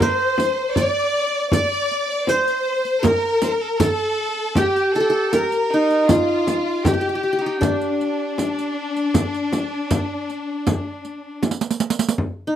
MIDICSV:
0, 0, Header, 1, 6, 480
1, 0, Start_track
1, 0, Time_signature, 4, 2, 24, 8
1, 0, Tempo, 761421
1, 7916, End_track
2, 0, Start_track
2, 0, Title_t, "Violin"
2, 0, Program_c, 0, 40
2, 0, Note_on_c, 0, 72, 85
2, 451, Note_off_c, 0, 72, 0
2, 477, Note_on_c, 0, 74, 81
2, 932, Note_off_c, 0, 74, 0
2, 949, Note_on_c, 0, 74, 90
2, 1288, Note_off_c, 0, 74, 0
2, 1319, Note_on_c, 0, 74, 78
2, 1438, Note_on_c, 0, 72, 80
2, 1448, Note_off_c, 0, 74, 0
2, 1912, Note_on_c, 0, 70, 84
2, 1921, Note_off_c, 0, 72, 0
2, 2167, Note_on_c, 0, 72, 68
2, 2177, Note_off_c, 0, 70, 0
2, 2216, Note_on_c, 0, 70, 67
2, 2226, Note_off_c, 0, 72, 0
2, 2277, Note_on_c, 0, 69, 67
2, 2287, Note_off_c, 0, 70, 0
2, 2319, Note_on_c, 0, 70, 66
2, 2328, Note_off_c, 0, 69, 0
2, 2384, Note_off_c, 0, 70, 0
2, 2384, Note_on_c, 0, 70, 82
2, 2454, Note_off_c, 0, 70, 0
2, 2454, Note_on_c, 0, 69, 82
2, 2874, Note_on_c, 0, 67, 72
2, 2884, Note_off_c, 0, 69, 0
2, 3116, Note_off_c, 0, 67, 0
2, 3123, Note_on_c, 0, 69, 72
2, 3361, Note_on_c, 0, 70, 83
2, 3371, Note_off_c, 0, 69, 0
2, 3830, Note_on_c, 0, 65, 75
2, 3840, Note_off_c, 0, 70, 0
2, 4190, Note_off_c, 0, 65, 0
2, 4194, Note_on_c, 0, 65, 71
2, 4311, Note_on_c, 0, 67, 73
2, 4321, Note_off_c, 0, 65, 0
2, 4675, Note_on_c, 0, 63, 66
2, 4684, Note_off_c, 0, 67, 0
2, 4788, Note_on_c, 0, 62, 68
2, 4798, Note_off_c, 0, 63, 0
2, 7196, Note_off_c, 0, 62, 0
2, 7916, End_track
3, 0, Start_track
3, 0, Title_t, "Violin section"
3, 0, Program_c, 1, 48
3, 0, Note_on_c, 1, 72, 86
3, 467, Note_on_c, 1, 74, 85
3, 472, Note_off_c, 1, 72, 0
3, 939, Note_off_c, 1, 74, 0
3, 946, Note_on_c, 1, 74, 90
3, 1406, Note_off_c, 1, 74, 0
3, 1433, Note_on_c, 1, 72, 86
3, 1909, Note_on_c, 1, 70, 85
3, 1915, Note_off_c, 1, 72, 0
3, 2393, Note_off_c, 1, 70, 0
3, 2401, Note_on_c, 1, 69, 83
3, 2879, Note_off_c, 1, 69, 0
3, 2886, Note_on_c, 1, 67, 83
3, 3105, Note_off_c, 1, 67, 0
3, 3113, Note_on_c, 1, 69, 79
3, 3353, Note_on_c, 1, 70, 74
3, 3356, Note_off_c, 1, 69, 0
3, 3596, Note_off_c, 1, 70, 0
3, 3596, Note_on_c, 1, 63, 73
3, 3835, Note_on_c, 1, 65, 82
3, 3837, Note_off_c, 1, 63, 0
3, 4311, Note_on_c, 1, 67, 73
3, 4317, Note_off_c, 1, 65, 0
3, 4795, Note_off_c, 1, 67, 0
3, 4807, Note_on_c, 1, 62, 70
3, 7180, Note_off_c, 1, 62, 0
3, 7916, End_track
4, 0, Start_track
4, 0, Title_t, "Qanun"
4, 0, Program_c, 2, 107
4, 0, Note_on_c, 2, 70, 80
4, 13, Note_on_c, 2, 72, 95
4, 489, Note_off_c, 2, 70, 0
4, 489, Note_on_c, 2, 74, 93
4, 679, Note_off_c, 2, 72, 0
4, 961, Note_off_c, 2, 74, 0
4, 964, Note_on_c, 2, 74, 98
4, 1445, Note_on_c, 2, 72, 100
4, 1585, Note_off_c, 2, 74, 0
4, 1909, Note_on_c, 2, 70, 92
4, 2111, Note_off_c, 2, 72, 0
4, 2397, Note_on_c, 2, 69, 93
4, 2434, Note_off_c, 2, 70, 0
4, 2883, Note_on_c, 2, 67, 92
4, 3123, Note_off_c, 2, 69, 0
4, 3125, Note_on_c, 2, 69, 82
4, 3151, Note_off_c, 2, 67, 0
4, 3154, Note_on_c, 2, 67, 70
4, 3211, Note_off_c, 2, 69, 0
4, 3214, Note_on_c, 2, 69, 82
4, 3363, Note_on_c, 2, 70, 88
4, 3401, Note_off_c, 2, 69, 0
4, 3617, Note_on_c, 2, 63, 71
4, 3847, Note_on_c, 2, 65, 87
4, 3945, Note_off_c, 2, 67, 0
4, 4076, Note_off_c, 2, 70, 0
4, 4332, Note_on_c, 2, 67, 81
4, 4370, Note_off_c, 2, 67, 0
4, 4373, Note_on_c, 2, 67, 56
4, 4416, Note_off_c, 2, 67, 0
4, 4419, Note_on_c, 2, 67, 59
4, 4468, Note_off_c, 2, 67, 0
4, 4470, Note_on_c, 2, 67, 47
4, 4506, Note_off_c, 2, 67, 0
4, 4509, Note_on_c, 2, 67, 54
4, 4526, Note_off_c, 2, 63, 0
4, 4558, Note_off_c, 2, 67, 0
4, 4560, Note_on_c, 2, 67, 46
4, 4617, Note_off_c, 2, 67, 0
4, 4619, Note_on_c, 2, 67, 60
4, 4653, Note_off_c, 2, 67, 0
4, 4656, Note_on_c, 2, 67, 52
4, 4695, Note_off_c, 2, 65, 0
4, 4702, Note_off_c, 2, 67, 0
4, 4704, Note_on_c, 2, 67, 64
4, 4796, Note_on_c, 2, 62, 78
4, 5496, Note_off_c, 2, 67, 0
4, 7174, Note_off_c, 2, 62, 0
4, 7863, Note_on_c, 2, 63, 61
4, 7916, Note_off_c, 2, 63, 0
4, 7916, End_track
5, 0, Start_track
5, 0, Title_t, "Frame drum"
5, 3, Note_on_c, 9, 64, 79
5, 66, Note_off_c, 9, 64, 0
5, 238, Note_on_c, 9, 64, 68
5, 301, Note_off_c, 9, 64, 0
5, 478, Note_on_c, 9, 64, 80
5, 541, Note_off_c, 9, 64, 0
5, 956, Note_on_c, 9, 64, 83
5, 1019, Note_off_c, 9, 64, 0
5, 1433, Note_on_c, 9, 64, 61
5, 1496, Note_off_c, 9, 64, 0
5, 1917, Note_on_c, 9, 64, 88
5, 1980, Note_off_c, 9, 64, 0
5, 2154, Note_on_c, 9, 64, 64
5, 2217, Note_off_c, 9, 64, 0
5, 2394, Note_on_c, 9, 64, 92
5, 2457, Note_off_c, 9, 64, 0
5, 2871, Note_on_c, 9, 64, 82
5, 2934, Note_off_c, 9, 64, 0
5, 3360, Note_on_c, 9, 64, 62
5, 3423, Note_off_c, 9, 64, 0
5, 3841, Note_on_c, 9, 64, 91
5, 3904, Note_off_c, 9, 64, 0
5, 4081, Note_on_c, 9, 64, 66
5, 4144, Note_off_c, 9, 64, 0
5, 4318, Note_on_c, 9, 64, 95
5, 4381, Note_off_c, 9, 64, 0
5, 4802, Note_on_c, 9, 64, 88
5, 4865, Note_off_c, 9, 64, 0
5, 5284, Note_on_c, 9, 64, 62
5, 5347, Note_off_c, 9, 64, 0
5, 5764, Note_on_c, 9, 64, 87
5, 5827, Note_off_c, 9, 64, 0
5, 6005, Note_on_c, 9, 64, 66
5, 6068, Note_off_c, 9, 64, 0
5, 6246, Note_on_c, 9, 64, 91
5, 6309, Note_off_c, 9, 64, 0
5, 6726, Note_on_c, 9, 64, 82
5, 6789, Note_off_c, 9, 64, 0
5, 7203, Note_on_c, 9, 64, 65
5, 7266, Note_off_c, 9, 64, 0
5, 7680, Note_on_c, 9, 64, 73
5, 7743, Note_off_c, 9, 64, 0
5, 7916, End_track
6, 0, Start_track
6, 0, Title_t, "Riq"
6, 13, Note_on_c, 9, 54, 63
6, 76, Note_off_c, 9, 54, 0
6, 250, Note_on_c, 9, 54, 45
6, 313, Note_off_c, 9, 54, 0
6, 486, Note_on_c, 9, 54, 54
6, 549, Note_off_c, 9, 54, 0
6, 967, Note_on_c, 9, 54, 62
6, 1030, Note_off_c, 9, 54, 0
6, 1089, Note_on_c, 9, 54, 18
6, 1152, Note_off_c, 9, 54, 0
6, 1206, Note_on_c, 9, 54, 19
6, 1270, Note_off_c, 9, 54, 0
6, 1442, Note_on_c, 9, 54, 52
6, 1505, Note_off_c, 9, 54, 0
6, 1561, Note_on_c, 9, 54, 19
6, 1624, Note_off_c, 9, 54, 0
6, 1796, Note_on_c, 9, 54, 19
6, 1859, Note_off_c, 9, 54, 0
6, 1920, Note_on_c, 9, 54, 63
6, 1983, Note_off_c, 9, 54, 0
6, 2154, Note_on_c, 9, 54, 51
6, 2217, Note_off_c, 9, 54, 0
6, 2395, Note_on_c, 9, 54, 62
6, 2458, Note_off_c, 9, 54, 0
6, 2878, Note_on_c, 9, 54, 59
6, 2941, Note_off_c, 9, 54, 0
6, 3002, Note_on_c, 9, 54, 17
6, 3065, Note_off_c, 9, 54, 0
6, 3120, Note_on_c, 9, 54, 19
6, 3183, Note_off_c, 9, 54, 0
6, 3359, Note_on_c, 9, 54, 50
6, 3422, Note_off_c, 9, 54, 0
6, 3480, Note_on_c, 9, 54, 18
6, 3543, Note_off_c, 9, 54, 0
6, 3722, Note_on_c, 9, 54, 18
6, 3785, Note_off_c, 9, 54, 0
6, 3839, Note_on_c, 9, 54, 68
6, 3902, Note_off_c, 9, 54, 0
6, 4083, Note_on_c, 9, 54, 45
6, 4146, Note_off_c, 9, 54, 0
6, 4324, Note_on_c, 9, 54, 58
6, 4388, Note_off_c, 9, 54, 0
6, 4809, Note_on_c, 9, 54, 58
6, 4872, Note_off_c, 9, 54, 0
6, 4925, Note_on_c, 9, 54, 17
6, 4988, Note_off_c, 9, 54, 0
6, 5049, Note_on_c, 9, 54, 17
6, 5112, Note_off_c, 9, 54, 0
6, 5289, Note_on_c, 9, 54, 45
6, 5352, Note_off_c, 9, 54, 0
6, 5413, Note_on_c, 9, 54, 16
6, 5476, Note_off_c, 9, 54, 0
6, 5652, Note_on_c, 9, 54, 16
6, 5715, Note_off_c, 9, 54, 0
6, 5767, Note_on_c, 9, 54, 67
6, 5830, Note_off_c, 9, 54, 0
6, 5890, Note_on_c, 9, 54, 16
6, 5953, Note_off_c, 9, 54, 0
6, 6008, Note_on_c, 9, 54, 45
6, 6071, Note_off_c, 9, 54, 0
6, 6245, Note_on_c, 9, 54, 62
6, 6308, Note_off_c, 9, 54, 0
6, 6490, Note_on_c, 9, 54, 15
6, 6553, Note_off_c, 9, 54, 0
6, 6724, Note_on_c, 9, 54, 60
6, 6787, Note_off_c, 9, 54, 0
6, 6964, Note_on_c, 9, 54, 18
6, 7027, Note_off_c, 9, 54, 0
6, 7205, Note_on_c, 9, 54, 55
6, 7257, Note_off_c, 9, 54, 0
6, 7257, Note_on_c, 9, 54, 61
6, 7320, Note_off_c, 9, 54, 0
6, 7320, Note_on_c, 9, 54, 66
6, 7379, Note_off_c, 9, 54, 0
6, 7379, Note_on_c, 9, 54, 66
6, 7440, Note_off_c, 9, 54, 0
6, 7440, Note_on_c, 9, 54, 76
6, 7503, Note_off_c, 9, 54, 0
6, 7503, Note_on_c, 9, 54, 79
6, 7560, Note_off_c, 9, 54, 0
6, 7560, Note_on_c, 9, 54, 85
6, 7619, Note_off_c, 9, 54, 0
6, 7619, Note_on_c, 9, 54, 81
6, 7682, Note_off_c, 9, 54, 0
6, 7916, End_track
0, 0, End_of_file